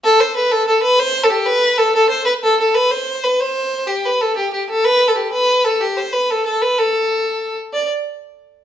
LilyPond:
\new Staff \with { instrumentName = "Fiddle" } { \time 6/8 \key a \minor \tempo 4. = 125 a'8 c''8 b'8 a'8 a'8 b'8 | c''8. a'16 g'8 b'4 a'8 | a'8 c''8 b'8 a'8 a'8 b'8 | c''4 b'8 c''4. |
g'8 b'8 a'8 g'8 g'8 a'8 | b'8. a'16 g'8 b'4 a'8 | g'8 c''8 b'8 a'8 a'8 b'8 | a'2~ a'8 r8 |
d''8 r2 r8 | }